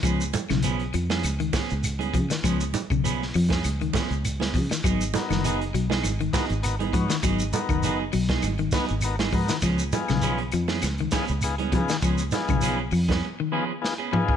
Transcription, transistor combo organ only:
X:1
M:4/4
L:1/16
Q:"Swing 16ths" 1/4=100
K:C#mix
V:1 name="Transistor combo organ"
z16 | z16 | z2 [B,DFA]3 z4 z [B,DFA]2 [B,DFA]2 [B,DFc]2 | z2 [B,DFA]3 z4 z [B,DFB]2 [B,DFA]2 [B,DFA]2 |
z2 [B,DEG]3 z4 z [B,DEG]2 [B,DEG]2 [B,DEG]2 | z2 [B,DEG]3 z4 z [B,DEG]2 [B,DEG]2 [B,DEG]2 |]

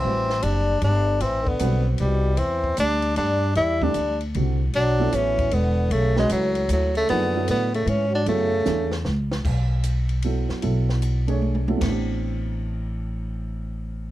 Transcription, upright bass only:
X:1
M:3/4
L:1/8
Q:"Swing" 1/4=153
K:Ador
V:1 name="Upright bass" clef=bass
A,,,2 F,,,2 G,,,2 | A,,,2 B,,,2 C,,2 | E,,2 D,,2 G,,2 | E,,2 D,,2 C,,2 |
B,,,2 A,,,2 E,,,2 | B,,,2 ^C,,2 D,,2 | F,,2 A,,2 ^G,,2 | F,,2 E,,2 ^C,,2 |
B,,,4- B,,, F,, | B,,,6 | A,,,6- | A,,,6 |]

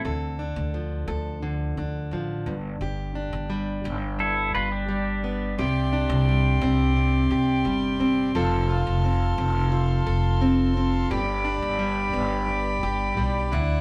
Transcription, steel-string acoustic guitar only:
X:1
M:4/4
L:1/8
Q:1/4=87
K:Gmix
V:1 name="Steel-string acoustic guitar"
[D,A] D F, A D, D F, G,, | [G,,G] D G, G G,, D G, B, | [C,G] D G, C C, G G, C | [F,A] F C C F, A C C |
[G,,G] D G, B, G,, G G, D, |]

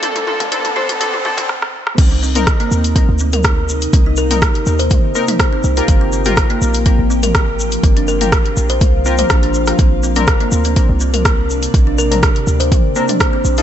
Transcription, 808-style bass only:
X:1
M:4/4
L:1/16
Q:1/4=123
K:Cdor
V:1 name="808-style bass" clef=bass
F,,,4- F,,, z A,,,3 z6 z | C,,4- C,, z E,,3 D,,6- D,, | C,,4- C,, z E,,3 z4 z C,, z | G,,,4- G,,, z B,,,3 A,,,6- A,,, |
G,,,4- G,,, z B,,,2 C,,4 B,,,4 | B,,,4- B,,, z D,,3 C,,6- C,, | B,,,4- B,,, z D,,3 z4 z B,,, z |]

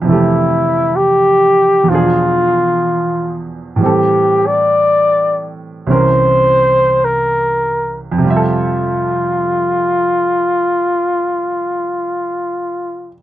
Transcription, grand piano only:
X:1
M:4/4
L:1/8
Q:"Swing" 1/4=55
K:F
V:1 name="Grand piano" clef=bass
[F,,C,E,A,G]4 [E,,=B,,F,D^G]4 | [A,,E,G,CA]4 [C,,C,E,_DB]4 | [F,,C,G,Ae]8 |]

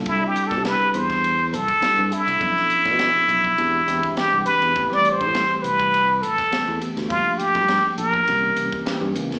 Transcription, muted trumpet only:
X:1
M:4/4
L:1/8
Q:"Swing 16ths" 1/4=102
K:C
V:1 name="Muted trumpet"
(3E G A B c2 A2 E- | E6 G B- | (3B d c- c B2 A2 z | F G2 _B3 z2 |]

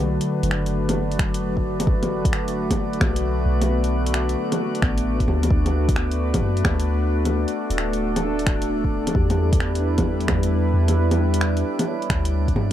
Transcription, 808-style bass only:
X:1
M:4/4
L:1/16
Q:"Swing 16ths" 1/4=132
K:Bm
V:1 name="808-style bass" clef=bass
B,,, z2 F,,,12- F,,,- | F,,,8- F,,,2 B,,,4 B,,,2- | B,,,6 z4 A,,,4 D,,2 | D,,8 F,,2 D,,6- |
D,, z2 D,,,12- D,,, | E,,8- E,,2 E,,4 E,,2- | E,,6 z4 D,,4 G,,2 |]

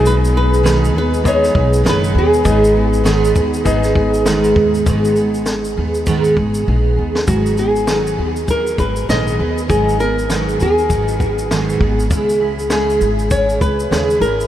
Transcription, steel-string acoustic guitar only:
X:1
M:4/4
L:1/8
Q:"Swing 16ths" 1/4=100
K:G#m
V:1 name="Steel-string acoustic guitar"
[B,,D,G,B,DG] [G,B,DG] [B,,D,G,B,DG] [G,B,DG] [G,B,DG] [G,B,DG] [B,,D,G,B,DG]2 | [G,,D,G,B,DG] [G,B,DG] [G,,D,G,B,DG] [G,B,DG] [G,B,DG] [G,B,DG] [G,,D,G,B,DG]2 | [G,,D,G,B,DG] [G,B,DG]2 [G,B,DG] [G,,D,G,B,DG] [G,B,DG] [G,B,DG] [G,B,DG] | [G,,D,F,B,DG] [F,B,DG] [G,,D,F,B,DG] [F,B,DG] [F,B,DG]2 [G,,D,F,B,DG] [F,B,DG] |
[G,,D,F,B,DG] [F,B,DG] [G,,D,F,B,DG] [F,B,DG] [F,B,DG]2 [G,,D,F,B,DG] [F,B,DG] | [C,G,CEG] [CEG] [C,G,CEG] [CEG] [G,CEG]2 [C,G,CEG] [CEG] |]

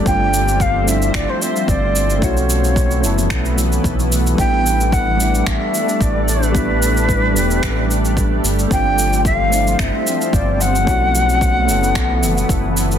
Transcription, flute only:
X:1
M:4/4
L:1/16
Q:1/4=111
K:Glyd
V:1 name="Flute"
g4 =f2 e2 d =c e2 d4 | c12 z4 | g4 f4 e4 d2 B2- | B12- B2 z2 |
g4 =f4 e4 d2 ^f2- | f12- f2 z2 |]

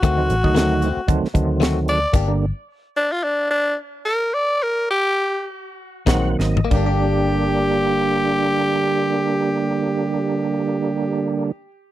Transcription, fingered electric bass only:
X:1
M:4/4
L:1/16
Q:"Swing 16ths" 1/4=100
K:Gm
V:1 name="Fingered electric bass" clef=bass
D,,2 A,,, D,,4 z D,, z D,,6 | G,,,3 z12 z | z12 B,,,2 _A,,,2 | G,,,16- |
G,,,16 |]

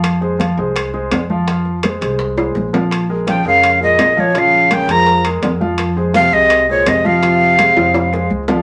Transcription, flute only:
X:1
M:4/4
L:1/8
Q:1/4=167
K:Fm
V:1 name="Flute"
z8 | z8 | z2 g f2 e2 d | f2 g b2 z3 |
z2 f e2 d e f- | f6 z2 |]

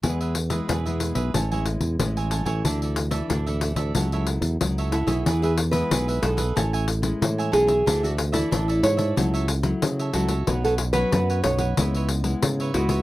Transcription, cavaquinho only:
X:1
M:4/4
L:1/16
Q:1/4=92
K:E
V:1 name="Cavaquinho"
[EGBe] [GBe] z [GBe] [EGBe] [GBe]2 [GBe] [Aceg] [ceg] z3 [ceg] [Aceg] [ceg] | [=DA=de] [Ade] z [Ade] [DAde] [Ade]2 [Ade] [FAce] [Ace] z3 [Ace] [FAce] [Ace] | [EGBe] [GBe] z [GBe] [EGBe] [GBe]2 [GBe] [Aceg] [ceg] z3 [ceg] [Aceg] [ceg] | [=DA=de] [Ade] z [Ade] [DAde] [Ade]2 [Ade] [FAce] [Ace] z3 [Ace] [FAce] [Ace] |
[FBcf] [Bcf] z [Bcf] [FBcf] [Bcf]2 [Bcf] [EBce] [Bce] z3 [Bce] [EBce] [Bce] |]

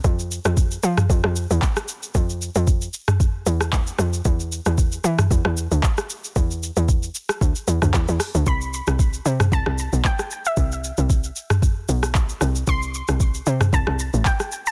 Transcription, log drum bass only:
X:1
M:4/4
L:1/16
Q:"Swing 16ths" 1/4=114
K:C
V:1 name="Log drum bass" clef=bass
F,,3 F,,3 F,2 F,, F,,2 E,, z4 | F,,3 F,,3 z4 E,,4 F,,2 | E,,3 E,,3 E,2 E,, E,,2 D,, z4 | E,,3 E,,3 z2 D,, z E,, D,, E,, E,, z D,, |
C,,3 C,,3 C,2 C,, C,,2 B,,, z4 | C,,3 C,,3 z4 B,,,4 C,,2 | C,,3 C,,3 C,2 C,, C,,2 A,,, z4 |]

